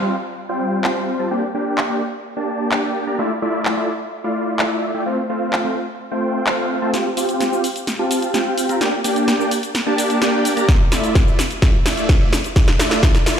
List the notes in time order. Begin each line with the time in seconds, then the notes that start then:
0.02 G3 C4 F4 C5 F5
0.49 G3 C4 F4 C5 G5
0.84 G3 C4 F4 C5 F5, clap
1.19 G3 C4 F4 C5 A5
1.31 A#3 D4 G4 D5 G5
1.55 A#3 D4 G4 D5 G5
1.78 clap
1.90 A#3 D4 G4 D5 G5
2.37 A#3 D4 G4 D5 A5
2.71 A#3 D4 G4 D5 G5, clap
3.07 A#3 D4 G4 D5 A#5
3.19 A3 E4 F4 D5 E5
3.42 A3 E4 F4 D5 E5
3.65 clap
3.77 A3 E4 F4 D5 E5
4.24 A3 E4 F4 D5 F5
4.59 A3 E4 F4 D5 E5, clap
4.94 A3 E4 F4 D5 G5
5.06 A3 C4 F4 C5 F5
5.29 A3 C4 F4 C5 F5
5.53 clap
5.65 A3 C4 F4 C5 F5
6.11 A3 C4 F4 C5 G5
6.47 A3 C4 F4 C5 F5, clap
6.82 A3 C4 F4 C5 A5
6.94 C4 F4 G4 F5 G5, snare, closed hi-hat, cabasa
7.17 C4 F4 G4 F5 G5, open hi-hat, cabasa
7.29 closed hi-hat, cabasa
7.40 snare, closed hi-hat, cabasa
7.52 C4 F4 G4 F5 G5, cabasa
7.64 open hi-hat, cabasa
7.76 closed hi-hat, cabasa
7.87 snare, closed hi-hat, cabasa
7.99 C4 F4 G4 F5 A5
8.11 open hi-hat, cabasa
8.22 closed hi-hat, cabasa
8.34 C4 F4 G4 F5 G5, snare, closed hi-hat, cabasa
8.58 open hi-hat, cabasa
8.69 C4 F4 G4 F5 A#5, closed hi-hat, cabasa
8.81 A#3 D4 G4 D5 G5, snare, closed hi-hat, cabasa
9.04 A#3 D4 G4 D5 G5, open hi-hat, cabasa
9.16 closed hi-hat, cabasa
9.28 snare, closed hi-hat, cabasa
9.40 A#3 D4 G4 D5 G5, cabasa
9.51 open hi-hat, cabasa
9.63 closed hi-hat, cabasa
9.75 snare, closed hi-hat, cabasa
9.86 A#3 D4 G4 D5 A5
9.98 open hi-hat, cabasa
10.10 closed hi-hat, cabasa
10.22 A#3 D4 G4 D5 G5, snare, closed hi-hat, cabasa
10.45 open hi-hat, cabasa
10.57 A#3 D4 G4 D5 A#5, closed hi-hat, cabasa
10.68 A3 E4 F4 D5 E5, kick, snare, closed hi-hat, cabasa
10.92 A3 E4 F4 D5 E5, snare, open hi-hat, cabasa
11.04 closed hi-hat, cabasa
11.15 kick, snare, closed hi-hat, cabasa
11.27 A3 E4 F4 D5 E5, cabasa
11.39 snare, open hi-hat, cabasa
11.51 closed hi-hat, cabasa
11.62 A3 E4 F4 D5 E5, kick, snare, closed hi-hat, cabasa
11.86 A3 E4 F4 D5 E5, snare, open hi-hat, cabasa
11.97 closed hi-hat, cabasa
12.09 kick, snare, closed hi-hat, cabasa
12.21 A3 E4 F4 D5 E5
12.33 snare, open hi-hat, cabasa
12.44 closed hi-hat, cabasa
12.56 A3 E4 F4 D5 E5, kick, snare, closed hi-hat, cabasa
12.68 snare
12.79 A3 E4 F4 D5 E5, snare, open hi-hat, cabasa
12.91 snare, closed hi-hat, cabasa
13.03 A3 E4 F4 D5 E5, kick, snare, closed hi-hat, cabasa
13.15 snare, closed hi-hat, cabasa
13.26 A3 E4 F4 D5 E5, snare, open hi-hat, cabasa